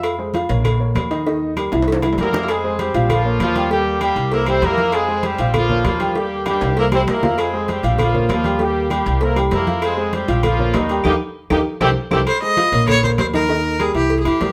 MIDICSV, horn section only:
0, 0, Header, 1, 2, 480
1, 0, Start_track
1, 0, Key_signature, -4, "minor"
1, 0, Tempo, 305655
1, 63, Time_signature, 4, 2, 24, 8
1, 22802, End_track
2, 0, Start_track
2, 0, Title_t, "Horn section"
2, 0, Program_c, 0, 61
2, 3459, Note_on_c, 0, 58, 100
2, 3459, Note_on_c, 0, 70, 109
2, 3463, Note_on_c, 0, 64, 84
2, 3888, Note_off_c, 0, 58, 0
2, 3888, Note_off_c, 0, 70, 0
2, 3890, Note_off_c, 0, 64, 0
2, 3924, Note_on_c, 0, 56, 93
2, 3924, Note_on_c, 0, 68, 101
2, 3925, Note_on_c, 0, 60, 89
2, 4393, Note_off_c, 0, 56, 0
2, 4393, Note_off_c, 0, 60, 0
2, 4393, Note_off_c, 0, 68, 0
2, 4415, Note_on_c, 0, 55, 86
2, 4415, Note_on_c, 0, 67, 93
2, 4419, Note_on_c, 0, 60, 78
2, 4846, Note_off_c, 0, 55, 0
2, 4846, Note_off_c, 0, 67, 0
2, 4848, Note_off_c, 0, 60, 0
2, 4895, Note_on_c, 0, 58, 84
2, 4902, Note_on_c, 0, 53, 101
2, 4902, Note_on_c, 0, 65, 110
2, 5353, Note_off_c, 0, 58, 0
2, 5354, Note_off_c, 0, 53, 0
2, 5354, Note_off_c, 0, 65, 0
2, 5372, Note_on_c, 0, 58, 80
2, 5373, Note_on_c, 0, 53, 109
2, 5373, Note_on_c, 0, 65, 118
2, 5804, Note_off_c, 0, 53, 0
2, 5804, Note_off_c, 0, 58, 0
2, 5804, Note_off_c, 0, 65, 0
2, 5850, Note_on_c, 0, 58, 79
2, 5853, Note_on_c, 0, 55, 104
2, 5853, Note_on_c, 0, 67, 113
2, 6283, Note_off_c, 0, 58, 0
2, 6285, Note_off_c, 0, 55, 0
2, 6285, Note_off_c, 0, 67, 0
2, 6332, Note_on_c, 0, 58, 79
2, 6338, Note_on_c, 0, 55, 106
2, 6338, Note_on_c, 0, 67, 115
2, 6764, Note_off_c, 0, 58, 0
2, 6767, Note_off_c, 0, 55, 0
2, 6767, Note_off_c, 0, 67, 0
2, 6808, Note_on_c, 0, 64, 97
2, 6814, Note_on_c, 0, 58, 110
2, 6814, Note_on_c, 0, 70, 119
2, 7018, Note_off_c, 0, 64, 0
2, 7022, Note_off_c, 0, 58, 0
2, 7022, Note_off_c, 0, 70, 0
2, 7044, Note_on_c, 0, 64, 95
2, 7050, Note_on_c, 0, 60, 115
2, 7050, Note_on_c, 0, 72, 125
2, 7269, Note_off_c, 0, 64, 0
2, 7276, Note_off_c, 0, 60, 0
2, 7276, Note_off_c, 0, 72, 0
2, 7287, Note_on_c, 0, 64, 98
2, 7298, Note_on_c, 0, 58, 113
2, 7298, Note_on_c, 0, 70, 123
2, 7754, Note_off_c, 0, 64, 0
2, 7756, Note_on_c, 0, 60, 90
2, 7760, Note_off_c, 0, 58, 0
2, 7760, Note_off_c, 0, 70, 0
2, 7767, Note_on_c, 0, 56, 113
2, 7767, Note_on_c, 0, 68, 122
2, 8229, Note_off_c, 0, 60, 0
2, 8234, Note_off_c, 0, 56, 0
2, 8234, Note_off_c, 0, 68, 0
2, 8247, Note_on_c, 0, 60, 81
2, 8260, Note_on_c, 0, 55, 98
2, 8260, Note_on_c, 0, 67, 106
2, 8714, Note_off_c, 0, 60, 0
2, 8721, Note_off_c, 0, 55, 0
2, 8721, Note_off_c, 0, 67, 0
2, 8746, Note_on_c, 0, 58, 86
2, 8750, Note_on_c, 0, 53, 110
2, 8750, Note_on_c, 0, 65, 120
2, 9172, Note_off_c, 0, 58, 0
2, 9174, Note_off_c, 0, 53, 0
2, 9174, Note_off_c, 0, 65, 0
2, 9209, Note_on_c, 0, 58, 86
2, 9222, Note_on_c, 0, 53, 96
2, 9222, Note_on_c, 0, 65, 104
2, 9643, Note_off_c, 0, 58, 0
2, 9650, Note_off_c, 0, 53, 0
2, 9650, Note_off_c, 0, 65, 0
2, 9697, Note_on_c, 0, 58, 83
2, 9709, Note_on_c, 0, 55, 98
2, 9709, Note_on_c, 0, 67, 106
2, 10160, Note_off_c, 0, 58, 0
2, 10166, Note_off_c, 0, 55, 0
2, 10166, Note_off_c, 0, 67, 0
2, 10182, Note_on_c, 0, 58, 81
2, 10187, Note_on_c, 0, 55, 97
2, 10187, Note_on_c, 0, 67, 105
2, 10611, Note_off_c, 0, 58, 0
2, 10613, Note_off_c, 0, 55, 0
2, 10613, Note_off_c, 0, 67, 0
2, 10655, Note_on_c, 0, 64, 89
2, 10668, Note_on_c, 0, 58, 105
2, 10668, Note_on_c, 0, 70, 114
2, 10756, Note_off_c, 0, 64, 0
2, 10766, Note_off_c, 0, 58, 0
2, 10766, Note_off_c, 0, 70, 0
2, 10901, Note_on_c, 0, 64, 88
2, 10913, Note_on_c, 0, 60, 101
2, 10913, Note_on_c, 0, 72, 110
2, 11001, Note_off_c, 0, 64, 0
2, 11010, Note_off_c, 0, 60, 0
2, 11010, Note_off_c, 0, 72, 0
2, 11145, Note_on_c, 0, 64, 80
2, 11151, Note_on_c, 0, 58, 98
2, 11151, Note_on_c, 0, 70, 106
2, 11572, Note_off_c, 0, 64, 0
2, 11575, Note_off_c, 0, 58, 0
2, 11575, Note_off_c, 0, 70, 0
2, 11609, Note_on_c, 0, 60, 88
2, 11622, Note_on_c, 0, 56, 94
2, 11622, Note_on_c, 0, 68, 102
2, 12077, Note_off_c, 0, 60, 0
2, 12083, Note_off_c, 0, 56, 0
2, 12083, Note_off_c, 0, 68, 0
2, 12108, Note_on_c, 0, 60, 67
2, 12121, Note_on_c, 0, 55, 82
2, 12121, Note_on_c, 0, 67, 89
2, 12535, Note_off_c, 0, 60, 0
2, 12542, Note_off_c, 0, 55, 0
2, 12542, Note_off_c, 0, 67, 0
2, 12585, Note_on_c, 0, 58, 83
2, 12599, Note_on_c, 0, 53, 96
2, 12599, Note_on_c, 0, 65, 104
2, 13013, Note_off_c, 0, 58, 0
2, 13020, Note_off_c, 0, 53, 0
2, 13020, Note_off_c, 0, 65, 0
2, 13067, Note_on_c, 0, 58, 82
2, 13075, Note_on_c, 0, 53, 91
2, 13075, Note_on_c, 0, 65, 99
2, 13494, Note_off_c, 0, 58, 0
2, 13498, Note_off_c, 0, 53, 0
2, 13498, Note_off_c, 0, 65, 0
2, 13543, Note_on_c, 0, 58, 77
2, 13554, Note_on_c, 0, 55, 97
2, 13554, Note_on_c, 0, 67, 106
2, 13998, Note_off_c, 0, 58, 0
2, 14005, Note_off_c, 0, 55, 0
2, 14005, Note_off_c, 0, 67, 0
2, 14017, Note_on_c, 0, 58, 73
2, 14024, Note_on_c, 0, 55, 88
2, 14024, Note_on_c, 0, 67, 95
2, 14449, Note_off_c, 0, 58, 0
2, 14453, Note_off_c, 0, 55, 0
2, 14453, Note_off_c, 0, 67, 0
2, 14494, Note_on_c, 0, 64, 85
2, 14502, Note_on_c, 0, 58, 102
2, 14502, Note_on_c, 0, 70, 111
2, 14720, Note_off_c, 0, 64, 0
2, 14724, Note_off_c, 0, 58, 0
2, 14724, Note_off_c, 0, 70, 0
2, 14984, Note_on_c, 0, 64, 87
2, 14988, Note_on_c, 0, 58, 96
2, 14988, Note_on_c, 0, 70, 104
2, 15413, Note_off_c, 0, 64, 0
2, 15415, Note_off_c, 0, 58, 0
2, 15415, Note_off_c, 0, 70, 0
2, 15464, Note_on_c, 0, 60, 87
2, 15471, Note_on_c, 0, 56, 96
2, 15471, Note_on_c, 0, 68, 104
2, 15893, Note_off_c, 0, 60, 0
2, 15897, Note_off_c, 0, 56, 0
2, 15897, Note_off_c, 0, 68, 0
2, 15935, Note_on_c, 0, 60, 76
2, 15946, Note_on_c, 0, 55, 90
2, 15946, Note_on_c, 0, 67, 98
2, 16369, Note_off_c, 0, 60, 0
2, 16374, Note_off_c, 0, 55, 0
2, 16374, Note_off_c, 0, 67, 0
2, 16411, Note_on_c, 0, 58, 88
2, 16422, Note_on_c, 0, 53, 103
2, 16422, Note_on_c, 0, 65, 112
2, 16879, Note_off_c, 0, 58, 0
2, 16885, Note_off_c, 0, 53, 0
2, 16885, Note_off_c, 0, 65, 0
2, 16896, Note_on_c, 0, 58, 75
2, 16899, Note_on_c, 0, 51, 97
2, 16899, Note_on_c, 0, 63, 105
2, 17343, Note_off_c, 0, 58, 0
2, 17344, Note_off_c, 0, 51, 0
2, 17344, Note_off_c, 0, 63, 0
2, 17358, Note_on_c, 0, 55, 85
2, 17358, Note_on_c, 0, 67, 93
2, 17361, Note_on_c, 0, 58, 100
2, 17362, Note_on_c, 0, 63, 102
2, 17470, Note_off_c, 0, 55, 0
2, 17470, Note_off_c, 0, 67, 0
2, 17472, Note_off_c, 0, 58, 0
2, 17473, Note_off_c, 0, 63, 0
2, 18080, Note_on_c, 0, 55, 80
2, 18080, Note_on_c, 0, 58, 88
2, 18080, Note_on_c, 0, 63, 95
2, 18080, Note_on_c, 0, 67, 87
2, 18191, Note_off_c, 0, 55, 0
2, 18191, Note_off_c, 0, 58, 0
2, 18191, Note_off_c, 0, 63, 0
2, 18191, Note_off_c, 0, 67, 0
2, 18563, Note_on_c, 0, 64, 111
2, 18564, Note_on_c, 0, 55, 101
2, 18564, Note_on_c, 0, 67, 109
2, 18565, Note_on_c, 0, 60, 106
2, 18673, Note_off_c, 0, 64, 0
2, 18674, Note_off_c, 0, 55, 0
2, 18674, Note_off_c, 0, 67, 0
2, 18675, Note_off_c, 0, 60, 0
2, 19042, Note_on_c, 0, 60, 96
2, 19042, Note_on_c, 0, 64, 93
2, 19045, Note_on_c, 0, 55, 88
2, 19045, Note_on_c, 0, 67, 96
2, 19152, Note_off_c, 0, 64, 0
2, 19153, Note_off_c, 0, 60, 0
2, 19155, Note_off_c, 0, 55, 0
2, 19155, Note_off_c, 0, 67, 0
2, 22802, End_track
0, 0, End_of_file